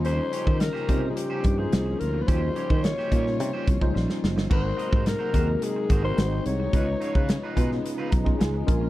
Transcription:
Already playing: fretless electric bass D#2, string section C#3 F3 A#3 C#4 D#4, tine electric piano G3 C#4 D#4 F4 C5
0.05 clean electric guitar C#4 G4 C5, alto saxophone C5, closed hi-hat
0.19 muted clean electric guitar stroke
0.32 clean electric guitar C#4 G4 C#5, closed hi-hat
0.47 fretless electric bass D#3, clean electric guitar C#4 G4 C5, kick
0.59 alto saxophone A#4, muted clean electric guitar stroke, snare, closed hi-hat
0.73 clean electric guitar C#4 G4 C5, snare
0.88 fretless electric bass C3, tine electric piano G3 C#4 D#4 F4 C5, clean electric guitar C#4 G4 C5, kick, closed hi-hat
1.03 muted clean electric guitar stroke
1.10 alto saxophone G#4
1.15 alto saxophone G4, muted clean electric guitar stroke, closed hi-hat
1.30 clean electric guitar C#4 G4 C5
1.44 fretless electric bass G2, kick, closed hi-hat
1.58 tine electric piano F3 C#4 D#4 F4 C5, alto saxophone G#4, muted clean electric guitar stroke
1.72 fretless electric bass C2, muted clean electric guitar stroke, snare, closed hi-hat
1.86 muted clean electric guitar stroke
1.99 fretless electric bass D2, string section F4, alto saxophone A#4, closed hi-hat
2.14 muted clean electric guitar stroke
2.22 alto saxophone B4
2.27 fretless electric bass D#2, tine electric piano G3 C#4 D#4 F4 F#4, clean electric guitar C#4 G4 C5, alto saxophone C5, kick, closed hi-hat
2.35 tine electric piano G4
2.41 muted clean electric guitar stroke
2.56 clean electric guitar C#4 G4 C#5, closed hi-hat
2.70 fretless electric bass D#3, clean electric guitar C#4 G4 C5, kick
2.84 alto saxophone C#5, muted clean electric guitar stroke, snare, closed hi-hat
2.98 clean electric guitar C#4 G4 C5, snare
3.11 fretless electric bass A#2, tine electric piano G3 C#4 D#4 F4 C#5, clean electric guitar C#4 G4 C5, kick, closed hi-hat
3.26 muted clean electric guitar stroke, snare
3.40 fretless electric bass C3, muted clean electric guitar stroke, closed hi-hat
3.53 clean electric guitar C#4 G4 C5
3.67 fretless electric bass C2, muted clean electric guitar stroke, kick, closed hi-hat
3.80 fretless electric bass C#2, tine electric piano F3 C#4 D#4 F4 C5, muted clean electric guitar stroke, kick
3.87 tine electric piano G3
3.94 fretless electric bass A#1, muted clean electric guitar stroke, snare
4.08 muted clean electric guitar stroke, snare
4.24 fretless electric bass F#1, snare
4.36 fretless electric bass G1, muted clean electric guitar stroke, snare
4.50 fretless electric bass G#1, string section C3 F#3 G#3 A#3 D#4, tine electric piano G#3 C4 D#4 F#4 A#4, clean electric guitar F#4 A#4 C5, alto saxophone C5, kick, crash
4.63 muted clean electric guitar stroke
4.77 clean electric guitar F#4 A#4 D#5, closed hi-hat
4.91 fretless electric bass G#2, clean electric guitar F#4 A#4 C5, kick
5.06 alto saxophone A#4, muted clean electric guitar stroke, snare, closed hi-hat
5.19 clean electric guitar F#4 A#4 C5
5.33 fretless electric bass D#2, tine electric piano G#3 C4 D#4 F#4 G#4, clean electric guitar F#4 A#4 C5, kick, closed hi-hat
5.40 tine electric piano A#4
5.48 muted clean electric guitar stroke
5.55 alto saxophone A#4
5.62 alto saxophone G#4, muted clean electric guitar stroke, closed hi-hat
5.76 muted clean electric guitar stroke
5.90 fretless electric bass G#1, clean electric guitar F#4 A#4 C5, kick, closed hi-hat
6.02 tine electric piano G#3 C4 D#4 F#4 A#4, clean electric guitar F#4 A#4 C5, alto saxophone C5
6.16 fretless electric bass G#1, string section C3 D#3 F#3, tine electric piano G#3 C4 D#4 F#4 B4, muted clean electric guitar stroke, snare, closed hi-hat
6.23 tine electric piano C5
6.32 muted clean electric guitar stroke
6.46 fretless electric bass C2, alto saxophone C#5, closed hi-hat
6.60 muted clean electric guitar stroke
6.72 fretless electric bass C#2, string section C#3 F3 G#3 B3, tine electric piano G#3 C#4 D#4 F4 B4, clean electric guitar D#4 F4 B4, kick, closed hi-hat
6.88 muted clean electric guitar stroke
7.00 clean electric guitar D#4 F4 C#5, closed hi-hat
7.15 fretless electric bass C#3, clean electric guitar D#4 F4 B4, kick
7.29 muted clean electric guitar stroke, snare, closed hi-hat
7.43 clean electric guitar D#4 F4 B4
7.56 fretless electric bass B2, tine electric piano G#3 C#4 D#4 F4 B4, clean electric guitar D#4 F4 B4, kick, closed hi-hat
7.72 muted clean electric guitar stroke, snare
7.85 muted clean electric guitar stroke, closed hi-hat
7.98 clean electric guitar D#4 F4 B4
8.11 fretless electric bass B1, tine electric piano A#5, muted clean electric guitar stroke, kick, closed hi-hat
8.24 tine electric piano G#3 C#4 D#4 F4 G#4, muted clean electric guitar stroke, kick
8.39 fretless electric bass C#2, tine electric piano G#5, muted clean electric guitar stroke, snare, closed hi-hat
8.54 muted clean electric guitar stroke
8.66 fretless electric bass A#1, tine electric piano G#3 A#3 C#4 F4 A#4 D#5, string section A#3 F4, kick, closed hi-hat
8.81 muted clean electric guitar stroke

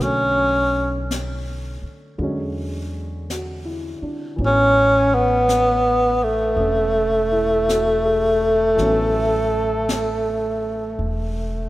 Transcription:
Already playing: grand piano D3
0.00 upright bass B1, grand piano F#3 A3, tenor saxophone C#4, brush sweep, snare
0.05 grand piano C#4
1.11 brush sweep, snare, hi-hat pedal
1.82 muted upright bass stroke
2.18 upright bass E2, grand piano D3 F#3 G#3, brush sweep
2.23 grand piano C#4
3.30 grand piano F#4, brush sweep, snare, hi-hat pedal
3.65 grand piano E4
4.02 grand piano D4, muted upright bass stroke
4.36 upright bass A1, grand piano E3 F#3 B3, brush sweep
4.41 grand piano C#4, tenor saxophone C#4
5.15 tenor saxophone B3
5.49 brush sweep, snare, hi-hat pedal
6.24 tenor saxophone A3
6.56 upright bass E1, grand piano A3 C#4, brush sweep
7.32 grand piano E4
7.68 grand piano F#4, brush sweep, snare, hi-hat pedal
8.04 grand piano G#4
8.41 grand piano A4
8.76 upright bass A1, grand piano E3 F#3 B3, brush sweep, snare
8.81 grand piano C#4
9.89 brush sweep, snare, hi-hat pedal
10.99 upright bass E1, brush sweep

